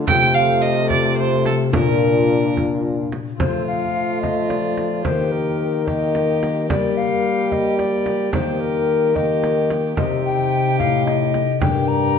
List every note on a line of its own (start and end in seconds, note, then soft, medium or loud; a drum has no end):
0.00 0.10 D3 medium
0.00 0.70 F3 medium
0.04 1.76 C3 medium
0.04 1.70 C3 medium
0.04 1.70 A3 medium
0.04 1.70 F4 medium
0.04 1.75 A4 medium
0.04 0.36 G5 loud
0.04 frame drum medium
0.08 1.70 F4 medium
0.35 0.63 F5 loud
0.61 0.90 D#5 loud
0.90 1.17 D5 medium
0.90 frame drum medium
1.18 1.45 C5 medium
1.46 1.54 A4 medium
1.46 frame drum medium
1.70 3.10 A#2 medium
1.70 3.42 A#2 medium
1.70 3.40 D4 medium
1.70 3.10 D4 medium
1.70 3.37 F4 soft
1.70 3.42 A#4 medium
1.70 frame drum medium
1.74 3.10 F4 medium
1.74 2.55 A#4 medium
2.57 frame drum medium
3.12 frame drum medium
3.36 5.07 F3 soft
3.36 5.01 F3 medium
3.36 5.01 A3 medium
3.36 5.05 C4 soft
3.36 5.06 F4 soft
3.36 5.06 A4 soft
3.36 3.66 C5 medium
3.36 frame drum medium
3.41 5.07 F4 medium
3.67 4.21 F5 medium
4.22 4.50 D#5 medium
4.22 frame drum soft
4.49 5.03 D5 medium
4.49 frame drum soft
4.78 frame drum soft
5.02 6.72 D#3 medium
5.02 6.71 D#3 medium
5.02 5.86 A#3 medium
5.02 5.83 G4 soft
5.02 5.86 G4 medium
5.02 5.85 A#4 soft
5.02 5.33 C5 medium
5.02 frame drum medium
5.32 5.89 A#4 medium
5.84 6.68 A#3 medium
5.84 6.65 G4 soft
5.84 6.68 G4 medium
5.84 6.67 A#4 soft
5.84 6.69 D#5 medium
5.84 frame drum medium
6.15 frame drum soft
6.43 frame drum medium
6.67 10.59 G3 soft
6.67 8.33 G3 medium
6.67 8.30 A#3 medium
6.67 8.29 G4 soft
6.67 8.30 G4 medium
6.67 8.31 A#4 soft
6.67 6.99 D5 medium
6.67 frame drum medium
6.97 7.53 F5 medium
7.52 7.77 D#5 medium
7.52 frame drum soft
7.78 8.32 D5 medium
7.78 frame drum soft
8.06 frame drum medium
8.31 10.00 D#3 medium
8.31 9.95 D#3 medium
8.31 9.14 A#3 medium
8.31 9.12 G4 soft
8.31 9.15 G4 medium
8.31 9.13 A#4 soft
8.31 8.62 C5 medium
8.31 frame drum medium
8.60 9.17 A#4 medium
9.13 9.96 A#3 medium
9.13 12.19 G4 soft
9.13 9.97 G4 medium
9.13 9.99 A#4 soft
9.13 9.70 D#5 medium
9.13 frame drum soft
9.44 frame drum medium
9.70 frame drum soft
9.96 10.81 C3 medium
9.96 11.64 C3 medium
9.96 11.63 D#4 soft
9.96 11.44 D#4 medium
9.96 11.58 G4 medium
9.96 11.63 C5 soft
9.96 10.23 D#5 medium
9.96 frame drum medium
10.25 10.78 G5 medium
10.79 11.64 A2 medium
10.79 11.44 A2 medium
10.79 11.05 F5 medium
10.79 frame drum soft
11.06 11.60 D#5 medium
11.06 frame drum soft
11.34 frame drum medium
11.59 12.19 G2 medium
11.59 12.19 D4 medium
11.59 12.19 G4 medium
11.59 12.19 A#4 soft
11.59 11.90 G5 medium
11.59 frame drum medium
11.88 12.19 A#5 medium